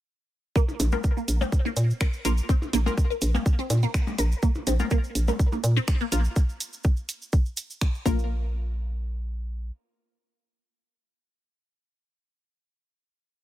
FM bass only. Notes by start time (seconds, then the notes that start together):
0.80 A#1
1.28 A#1
1.77 A#2
2.25 A#1
2.73 A#1
3.22 A#1
3.70 A#2
4.18 A#1
4.67 A#1
5.15 A#1
5.64 A#2
6.12 A#1
8.06 A#1